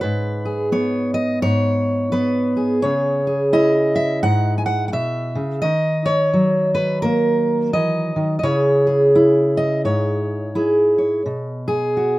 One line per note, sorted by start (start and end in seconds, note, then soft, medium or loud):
0.01 1.41 G#2 medium
0.01 1.42 B4 medium
0.45 0.72 G#4 medium
0.72 2.12 B3 medium
0.72 1.14 C#5 medium
1.14 1.42 D#5 loud
1.42 2.83 G#2 medium
1.42 2.55 C#5 loud
2.12 2.80 B3 medium
2.12 2.82 B4 medium
2.57 3.26 G#4 soft
2.82 4.24 C#3 medium
2.82 3.53 C#5 loud
3.27 5.61 G#4 medium
3.53 5.60 E4 medium
3.53 4.66 D#5 loud
3.96 4.22 E5 loud
4.23 4.92 G#2 medium
4.23 4.57 F#5 loud
4.58 4.65 G#5 medium
4.66 4.87 F#5 loud
4.88 4.93 F#5 medium
4.92 5.35 B2 medium
4.92 5.61 E5 loud
5.35 5.63 C#3 medium
5.62 8.15 D#3 medium
5.62 6.75 D#5 loud
6.06 6.74 C#5 loud
6.33 8.43 F#3 medium
6.75 7.02 B4 medium
7.02 7.74 A#3 medium
7.02 8.43 A#4 loud
7.73 8.16 E3 medium
7.73 8.38 D#5 medium
8.16 8.43 D#3 medium
8.39 8.44 D#5 medium
8.43 9.84 C#3 medium
8.43 9.14 E4 medium
8.43 8.86 G#4 medium
8.43 9.56 C#5 loud
8.87 10.55 G#4 medium
9.15 10.54 E4 medium
9.57 9.85 D#5 medium
9.85 11.25 G#2 medium
9.85 10.97 C#5 medium
10.55 11.22 E4 medium
10.55 11.22 G#4 medium
10.98 11.22 C#5 soft
11.26 12.19 B2 medium
11.68 12.19 G#4 medium
11.97 12.19 F#4 medium